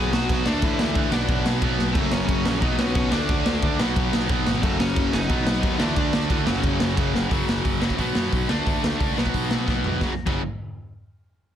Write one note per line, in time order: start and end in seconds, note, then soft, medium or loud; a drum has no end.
0.00 0.11 B1 medium
0.00 0.44 B2 loud
0.00 0.46 F#3 loud
0.00 0.12 G#3 medium
0.00 0.45 B3 loud
0.00 0.13 G#4 loud
0.13 0.27 B1 medium
0.13 0.44 F#3 medium
0.13 0.47 F#4 medium
0.13 snare loud
0.29 0.44 B1 loud
0.29 kick loud
0.29 crash medium
0.45 0.60 D2 loud
0.45 0.94 D3 medium
0.45 0.95 A3 loud
0.45 0.95 D4 medium
0.45 0.64 D4 medium
0.45 0.62 D5 medium
0.45 snare loud
0.62 0.77 D2 loud
0.62 1.10 E3 medium
0.62 1.10 E4 medium
0.62 kick loud
0.62 crash medium
0.79 0.94 D2 loud
0.79 snare loud
0.95 1.10 D2 medium
0.95 1.11 D3 medium
0.95 1.12 A3 medium
0.95 1.12 D4 medium
0.95 kick loud
0.95 crash medium
1.12 1.27 B1 medium
1.12 1.61 B2 loud
1.12 1.63 F#3 loud
1.12 1.62 B3 loud
1.12 1.43 D4 medium
1.12 1.44 D5 medium
1.12 snare loud
1.28 1.43 B1 loud
1.28 kick loud
1.28 crash medium
1.45 1.60 B1 loud
1.45 snare loud
1.62 1.77 B1 medium
1.62 1.95 B2 medium
1.62 1.97 F#3 medium
1.62 1.96 B3 medium
1.62 kick loud
1.62 crash medium
1.78 1.96 B1 medium
1.78 snare medium
1.94 2.10 F#1 loud
1.94 2.45 F#2 loud
1.94 2.45 C#3 loud
1.94 2.44 F#3 loud
1.94 2.12 A3 loud
1.94 2.11 A4 medium
1.94 kick loud
1.94 crash medium
2.11 2.27 F#1 loud
2.11 2.61 C#4 loud
2.11 2.58 C#5 medium
2.11 snare loud
2.28 2.43 F#1 loud
2.28 kick loud
2.28 crash medium
2.45 2.61 A#1 loud
2.45 2.62 F#2 medium
2.45 2.61 C#3 medium
2.45 2.62 F#3 medium
2.45 snare loud
2.61 2.77 B1 loud
2.61 3.11 B2 loud
2.61 3.12 F#3 loud
2.61 3.12 B3 loud
2.61 2.78 D#4 loud
2.61 2.78 D#5 medium
2.61 kick loud
2.61 crash medium
2.78 2.94 B1 loud
2.78 2.94 C#4 medium
2.78 2.95 C#5 medium
2.78 snare loud
2.95 3.10 B1 loud
2.95 3.12 C#4 medium
2.95 3.12 C#5 medium
2.95 kick loud
2.95 crash medium
3.12 3.27 D2 loud
3.12 3.61 D3 medium
3.12 3.62 A3 medium
3.12 3.79 D4 loud
3.12 3.62 D4 loud
3.12 3.75 D5 medium
3.12 snare loud
3.29 3.44 D2 loud
3.29 kick loud
3.29 crash medium
3.46 3.60 D2 medium
3.46 snare loud
3.62 3.77 D2 loud
3.62 3.78 D3 medium
3.62 3.79 A3 medium
3.62 3.79 D4 loud
3.62 kick loud
3.62 crash medium
3.79 3.94 B1 loud
3.79 4.28 B2 loud
3.79 4.30 F#3 loud
3.79 4.29 B3 loud
3.79 snare loud
3.96 4.11 B1 loud
3.96 kick loud
3.96 crash medium
4.13 4.27 B1 loud
4.13 snare loud
4.29 4.44 B1 loud
4.29 4.62 B2 medium
4.29 4.65 F#3 medium
4.29 4.63 B3 medium
4.29 kick loud
4.29 crash medium
4.46 4.63 G#1 medium
4.46 snare loud
4.63 4.78 F#1 loud
4.63 5.12 F#2 loud
4.63 5.13 C#3 loud
4.63 5.12 F#3 loud
4.63 4.80 A3 medium
4.63 4.79 A4 medium
4.63 kick loud
4.63 crash medium
4.80 4.94 F#1 loud
4.80 5.11 C#4 loud
4.80 5.11 C#5 medium
4.80 snare loud
4.96 5.11 F#1 loud
4.96 kick loud
4.96 crash medium
5.13 5.28 F#1 loud
5.13 5.30 F#2 medium
5.13 5.27 C#3 medium
5.13 5.28 F#3 loud
5.13 5.76 D#4 loud
5.13 5.77 D#5 medium
5.13 snare loud
5.28 5.45 B1 medium
5.28 5.78 B2 loud
5.28 5.81 F#3 loud
5.28 5.79 B3 loud
5.28 kick loud
5.28 crash medium
5.46 5.61 B1 loud
5.46 snare loud
5.63 5.78 D#2 medium
5.63 kick loud
5.63 crash medium
5.79 5.95 D2 medium
5.79 6.28 D3 medium
5.79 5.96 E3 medium
5.79 6.29 A3 loud
5.79 6.30 D4 medium
5.79 5.97 E4 medium
5.79 snare loud
5.96 6.11 D2 loud
5.96 6.31 D4 loud
5.96 6.28 D5 medium
5.96 kick loud
5.96 crash medium
6.13 6.28 D2 loud
6.13 snare loud
6.29 6.45 D2 loud
6.29 6.46 D3 medium
6.29 6.36 E3 medium
6.29 6.46 A3 medium
6.29 6.47 D4 medium
6.29 6.36 E4 medium
6.29 kick loud
6.29 crash medium
6.45 6.62 F#1 loud
6.45 6.95 F#2 loud
6.45 6.96 C#3 loud
6.45 6.97 F#3 loud
6.45 6.94 F#3 medium
6.45 6.97 F#4 loud
6.45 snare loud
6.63 6.78 F#1 loud
6.63 kick loud
6.63 crash medium
6.80 6.95 F#1 loud
6.80 snare loud
6.96 7.12 F#1 loud
6.96 7.28 F#2 medium
6.96 7.30 C#3 medium
6.96 7.30 F#3 medium
6.96 kick loud
6.96 crash medium
7.15 7.29 F#1 medium
7.15 snare medium
7.29 7.42 F#1 loud
7.29 7.97 F#2 medium
7.29 7.98 C#3 loud
7.29 7.99 F#3 loud
7.29 kick loud
7.29 open hi-hat medium
7.49 7.59 F#1 medium
7.49 snare loud
7.65 7.87 F#1 medium
7.65 kick loud
7.65 open hi-hat medium
7.80 7.98 F#2 medium
7.80 7.97 C#3 medium
7.80 7.98 F#3 medium
7.80 snare loud
7.90 kick loud
7.98 8.10 B1 loud
7.98 8.48 B2 loud
7.98 8.50 F#3 loud
7.98 8.49 B3 loud
7.98 kick loud
7.98 open hi-hat medium
8.15 8.27 F#2 medium
8.15 snare loud
8.33 8.43 B1 medium
8.33 kick loud
8.33 open hi-hat medium
8.49 8.60 D2 medium
8.49 9.16 D3 medium
8.49 9.16 A3 medium
8.49 9.17 D4 medium
8.49 snare loud
8.67 8.77 D2 loud
8.67 kick loud
8.67 open hi-hat medium
8.83 8.94 D2 medium
8.83 snare loud
8.99 9.11 C#2 loud
8.99 9.15 D3 medium
8.99 9.16 A3 medium
8.99 9.16 D4 medium
8.99 kick loud
8.99 open hi-hat medium
9.17 9.28 B1 loud
9.17 10.01 B2 medium
9.17 10.01 F#3 loud
9.17 10.02 B3 medium
9.17 snare loud
9.26 kick medium
9.34 9.56 B1 medium
9.34 kick loud
9.34 open hi-hat medium
9.51 snare loud
9.67 9.79 B1 medium
9.67 10.00 B2 medium
9.67 10.01 F#3 medium
9.67 10.01 B3 medium
9.67 kick loud
9.67 snare medium
9.84 9.96 B1 medium
9.84 floor tom medium
10.01 10.11 F#1 medium
10.01 10.12 F#2 loud
10.01 10.12 C#3 medium
10.01 10.12 F#3 loud
10.01 kick loud
10.01 snare medium
10.26 10.43 F#1 loud
10.26 10.40 F#2 medium
10.26 10.41 C#3 medium
10.26 10.41 F#3 loud
10.26 kick loud
10.26 crash medium